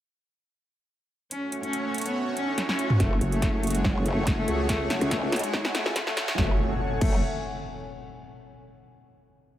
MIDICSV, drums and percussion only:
0, 0, Header, 1, 2, 480
1, 0, Start_track
1, 0, Key_signature, 3, "minor"
1, 0, Tempo, 422535
1, 1488, Time_signature, 4, 2, 24, 8
1, 10890, End_track
2, 0, Start_track
2, 0, Title_t, "Drums"
2, 1489, Note_on_c, 9, 42, 77
2, 1602, Note_off_c, 9, 42, 0
2, 1729, Note_on_c, 9, 42, 50
2, 1842, Note_off_c, 9, 42, 0
2, 1856, Note_on_c, 9, 42, 34
2, 1969, Note_off_c, 9, 42, 0
2, 1969, Note_on_c, 9, 42, 72
2, 2082, Note_off_c, 9, 42, 0
2, 2209, Note_on_c, 9, 42, 48
2, 2251, Note_off_c, 9, 42, 0
2, 2251, Note_on_c, 9, 42, 63
2, 2288, Note_off_c, 9, 42, 0
2, 2288, Note_on_c, 9, 42, 80
2, 2336, Note_off_c, 9, 42, 0
2, 2336, Note_on_c, 9, 42, 74
2, 2449, Note_off_c, 9, 42, 0
2, 2689, Note_on_c, 9, 42, 50
2, 2802, Note_off_c, 9, 42, 0
2, 2928, Note_on_c, 9, 38, 59
2, 2928, Note_on_c, 9, 42, 78
2, 3042, Note_off_c, 9, 38, 0
2, 3042, Note_off_c, 9, 42, 0
2, 3055, Note_on_c, 9, 38, 59
2, 3168, Note_on_c, 9, 42, 52
2, 3169, Note_off_c, 9, 38, 0
2, 3282, Note_off_c, 9, 42, 0
2, 3296, Note_on_c, 9, 45, 81
2, 3408, Note_on_c, 9, 36, 92
2, 3408, Note_on_c, 9, 38, 46
2, 3408, Note_on_c, 9, 42, 78
2, 3409, Note_off_c, 9, 45, 0
2, 3521, Note_off_c, 9, 36, 0
2, 3522, Note_off_c, 9, 38, 0
2, 3522, Note_off_c, 9, 42, 0
2, 3648, Note_on_c, 9, 42, 53
2, 3762, Note_off_c, 9, 42, 0
2, 3776, Note_on_c, 9, 42, 37
2, 3888, Note_off_c, 9, 42, 0
2, 3888, Note_on_c, 9, 36, 94
2, 3888, Note_on_c, 9, 38, 51
2, 3888, Note_on_c, 9, 42, 77
2, 4002, Note_off_c, 9, 36, 0
2, 4002, Note_off_c, 9, 38, 0
2, 4002, Note_off_c, 9, 42, 0
2, 4128, Note_on_c, 9, 42, 49
2, 4171, Note_off_c, 9, 42, 0
2, 4171, Note_on_c, 9, 42, 68
2, 4208, Note_off_c, 9, 42, 0
2, 4208, Note_on_c, 9, 42, 83
2, 4255, Note_off_c, 9, 42, 0
2, 4255, Note_on_c, 9, 42, 82
2, 4368, Note_on_c, 9, 36, 96
2, 4368, Note_on_c, 9, 38, 59
2, 4369, Note_off_c, 9, 42, 0
2, 4482, Note_off_c, 9, 36, 0
2, 4482, Note_off_c, 9, 38, 0
2, 4608, Note_on_c, 9, 42, 52
2, 4722, Note_off_c, 9, 42, 0
2, 4848, Note_on_c, 9, 36, 97
2, 4848, Note_on_c, 9, 38, 66
2, 4848, Note_on_c, 9, 42, 83
2, 4961, Note_off_c, 9, 36, 0
2, 4962, Note_off_c, 9, 38, 0
2, 4962, Note_off_c, 9, 42, 0
2, 5088, Note_on_c, 9, 42, 54
2, 5202, Note_off_c, 9, 42, 0
2, 5328, Note_on_c, 9, 36, 93
2, 5328, Note_on_c, 9, 38, 72
2, 5328, Note_on_c, 9, 42, 82
2, 5442, Note_off_c, 9, 36, 0
2, 5442, Note_off_c, 9, 38, 0
2, 5442, Note_off_c, 9, 42, 0
2, 5568, Note_on_c, 9, 38, 79
2, 5568, Note_on_c, 9, 42, 53
2, 5682, Note_off_c, 9, 38, 0
2, 5682, Note_off_c, 9, 42, 0
2, 5695, Note_on_c, 9, 42, 38
2, 5808, Note_off_c, 9, 42, 0
2, 5808, Note_on_c, 9, 36, 101
2, 5808, Note_on_c, 9, 38, 78
2, 5808, Note_on_c, 9, 42, 84
2, 5922, Note_off_c, 9, 36, 0
2, 5922, Note_off_c, 9, 38, 0
2, 5922, Note_off_c, 9, 42, 0
2, 6048, Note_on_c, 9, 38, 84
2, 6048, Note_on_c, 9, 42, 54
2, 6090, Note_off_c, 9, 42, 0
2, 6090, Note_on_c, 9, 42, 67
2, 6128, Note_off_c, 9, 42, 0
2, 6128, Note_on_c, 9, 42, 88
2, 6162, Note_off_c, 9, 38, 0
2, 6175, Note_off_c, 9, 42, 0
2, 6175, Note_on_c, 9, 42, 81
2, 6288, Note_on_c, 9, 36, 99
2, 6288, Note_on_c, 9, 38, 94
2, 6289, Note_off_c, 9, 42, 0
2, 6401, Note_off_c, 9, 38, 0
2, 6402, Note_off_c, 9, 36, 0
2, 6415, Note_on_c, 9, 38, 83
2, 6528, Note_off_c, 9, 38, 0
2, 6528, Note_on_c, 9, 38, 93
2, 6528, Note_on_c, 9, 42, 54
2, 6641, Note_off_c, 9, 38, 0
2, 6641, Note_off_c, 9, 42, 0
2, 6655, Note_on_c, 9, 38, 86
2, 6768, Note_off_c, 9, 38, 0
2, 6768, Note_on_c, 9, 36, 95
2, 6768, Note_on_c, 9, 38, 104
2, 6768, Note_on_c, 9, 42, 88
2, 6881, Note_off_c, 9, 38, 0
2, 6881, Note_off_c, 9, 42, 0
2, 6882, Note_off_c, 9, 36, 0
2, 6895, Note_on_c, 9, 38, 87
2, 7008, Note_off_c, 9, 38, 0
2, 7008, Note_on_c, 9, 38, 113
2, 7008, Note_on_c, 9, 42, 59
2, 7122, Note_off_c, 9, 38, 0
2, 7122, Note_off_c, 9, 42, 0
2, 7135, Note_on_c, 9, 38, 96
2, 7248, Note_off_c, 9, 38, 0
2, 7248, Note_on_c, 9, 36, 117
2, 7248, Note_on_c, 9, 38, 86
2, 7362, Note_off_c, 9, 36, 0
2, 7362, Note_off_c, 9, 38, 0
2, 7968, Note_on_c, 9, 36, 114
2, 7968, Note_on_c, 9, 49, 90
2, 8081, Note_off_c, 9, 49, 0
2, 8082, Note_off_c, 9, 36, 0
2, 10890, End_track
0, 0, End_of_file